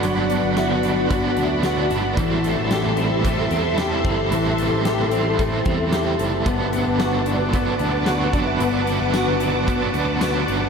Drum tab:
HH |xxxxxxxx|xxxxxxxx|xxxxxxxx|xxxxxxxx|
TB |--------|--------|--------|--------|
SD |--o---o-|--o---o-|--o---o-|--o---o-|
BD |----o---|o---o--o|----oo--|o---o--o|

HH |xxxxxxxx|
TB |--x---x-|
SD |--o---o-|
BD |----o---|